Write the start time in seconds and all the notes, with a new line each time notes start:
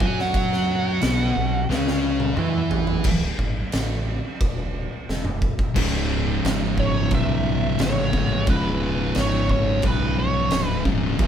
Already playing: G#5
0.00 F#2 F#3 F#4, kick
0.19 F#5, snare
0.34 F#5, kick, crash
0.52 snare
1.01 B1 B2 B3, snare, crash
1.35 B1 B2
1.69 C#2 C#3 C#4, snare
1.88 snare
2.20 high tom
2.37 E2 E3 E4, mid tom
2.71 floor tom
2.87 floor tom
3.04 C#1, kick, crash
3.39 G#1, kick
3.72 A1, snare, crash
4.41 E1, kick, crash
5.09 E1, snare
5.25 mid tom
5.42 kick
5.59 kick
5.74 C#1 C#2 G#2 C#3, kick, crash
6.44 G#1, snare, crash
6.78 C#5, kick
7.11 B1, kick, crash
7.15 E5
7.79 A1 C#5, snare, crash
8.13 C#2 G#2 C#3, kick
8.47 E1 C#2 G#2 C#3 B4, kick, crash
9.15 G#1, snare, crash
9.19 C#5
9.49 C#5, kick
9.82 B1 B4, kick, crash
10.19 C#5
10.51 D1, snare, crash
10.66 B4
10.84 C#2 G#2 C#3, kick
11.18 E1 E2 B2 E3, kick, crash